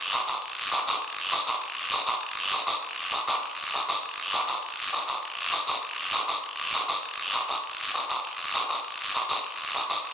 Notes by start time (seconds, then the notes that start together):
0.13 short guiro
0.27 short guiro
0.42 long guiro
0.72 short guiro
0.87 short guiro
1.02 long guiro
1.32 short guiro
1.47 short guiro
1.61 long guiro
1.92 short guiro
2.06 short guiro
2.21 long guiro
2.52 short guiro
2.67 short guiro
2.83 long guiro
3.12 short guiro
3.28 short guiro
3.43 long guiro
3.74 short guiro
3.89 short guiro
4.03 long guiro
4.33 short guiro
4.47 short guiro
4.63 long guiro
4.93 short guiro
5.08 short guiro
5.23 long guiro
5.52 short guiro
5.67 short guiro
5.83 long guiro
6.13 short guiro
6.28 short guiro
6.44 long guiro
6.74 short guiro
6.88 short guiro
7.03 long guiro
7.33 short guiro
7.49 short guiro
7.64 long guiro
7.94 short guiro
8.09 short guiro
8.25 long guiro
8.54 short guiro
8.69 short guiro
8.85 long guiro
9.14 short guiro
9.29 short guiro
9.44 long guiro
9.74 short guiro
9.90 short guiro
10.05 long guiro